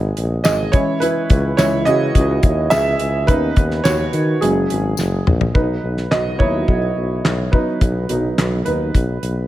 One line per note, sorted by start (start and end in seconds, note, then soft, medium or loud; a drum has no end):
0.00 0.12 G#1 medium
0.00 0.73 G#3 medium
0.00 0.75 A#3 medium
0.00 0.76 B3 medium
0.00 0.46 G#4 medium
0.00 0.44 D#5 medium
0.17 0.40 A#1 medium
0.17 closed hi-hat medium
0.44 0.69 G#1 loud
0.44 0.72 G#4 medium
0.44 0.74 D#5 medium
0.44 snare loud
0.44 clap medium
0.44 closed hi-hat medium
0.44 tambourine medium
0.72 1.54 E3 medium
0.72 1.54 G#3 medium
0.72 1.55 C#4 medium
0.72 1.00 E4 medium
0.72 0.99 C#5 medium
0.72 kick loud
0.72 closed hi-hat medium
1.00 1.55 E4 medium
1.00 1.59 B4 medium
1.00 closed hi-hat medium
1.30 1.53 C#2 loud
1.30 kick medium
1.30 closed hi-hat medium
1.57 1.82 C#2 medium
1.57 1.84 E3 medium
1.57 1.84 G#3 soft
1.57 1.84 C#4 medium
1.57 1.85 E4 medium
1.57 1.87 C#5 loud
1.57 snare loud
1.57 clap medium
1.57 closed hi-hat medium
1.57 tambourine medium
1.85 2.10 C#3 medium
1.85 2.68 F#4 medium
1.85 2.74 D#5 medium
1.85 closed hi-hat medium
2.15 2.38 C#2 loud
2.15 kick medium
2.15 closed hi-hat medium
2.43 2.67 D#2 medium
2.43 kick medium
2.43 closed hi-hat medium
2.70 2.95 C#2 loud
2.70 3.25 G#4 medium
2.70 3.24 E5 loud
2.70 snare loud
2.70 clap medium
2.70 closed hi-hat medium
2.70 tambourine medium
2.99 3.30 C#2 medium
2.99 closed hi-hat medium
3.27 3.52 D#2 loud
3.27 4.09 D#3 medium
3.27 4.09 B3 soft
3.27 4.10 C#4 medium
3.27 3.82 D#4 medium
3.27 3.86 B4 loud
3.27 kick loud
3.27 closed hi-hat medium
3.56 3.80 D#2 medium
3.56 kick medium
3.56 closed hi-hat medium
3.71 snare soft
3.84 4.08 D#2 medium
3.84 4.38 F#4 medium
3.84 4.43 C#5 loud
3.84 snare loud
3.84 clap medium
3.84 closed hi-hat medium
3.84 tambourine medium
4.13 4.37 D#3 medium
4.13 closed hi-hat medium
4.41 4.65 F#1 medium
4.41 5.51 F#3 medium
4.41 5.51 G#3 soft
4.41 5.23 C#4 medium
4.41 5.22 G#4 medium
4.41 closed hi-hat medium
4.70 4.93 G#1 medium
4.70 closed hi-hat medium
4.97 5.21 F#1 medium
4.97 snare medium
4.97 tambourine medium
5.27 5.50 A#1 loud
5.27 mid tom medium
5.41 floor tom medium
5.54 5.78 B1 medium
5.54 6.08 D#4 medium
5.54 6.07 B4 medium
5.54 kick medium
5.83 6.06 B1 medium
5.97 snare soft
6.11 6.41 B1 medium
6.11 6.38 F#4 medium
6.11 6.38 D#5 medium
6.11 snare medium
6.11 clap medium
6.39 6.63 D#2 medium
6.39 6.77 F#3 soft
6.39 6.77 B3 soft
6.39 6.78 D#4 soft
6.39 7.49 E4 medium
6.39 7.56 C#5 medium
6.39 kick medium
6.68 6.91 B1 medium
6.68 kick medium
6.96 7.20 B1 medium
7.25 7.48 B1 medium
7.25 snare medium
7.25 clap medium
7.52 7.78 F#3 soft
7.52 7.79 B3 soft
7.52 8.09 D#4 medium
7.52 8.64 B4 medium
7.52 kick medium
7.81 8.05 B1 loud
7.81 kick medium
7.81 closed hi-hat medium
8.09 8.33 B1 medium
8.09 8.90 F#3 soft
8.09 8.91 B3 soft
8.09 8.66 D#4 medium
8.09 closed hi-hat medium
8.38 8.61 B1 medium
8.38 snare medium
8.38 clap medium
8.38 closed hi-hat medium
8.65 8.89 D#2 medium
8.65 9.47 D#4 soft
8.65 9.47 B4 medium
8.65 closed hi-hat medium
8.94 9.18 B1 medium
8.94 kick medium
8.94 closed hi-hat medium
9.22 9.46 B1 medium
9.22 closed hi-hat medium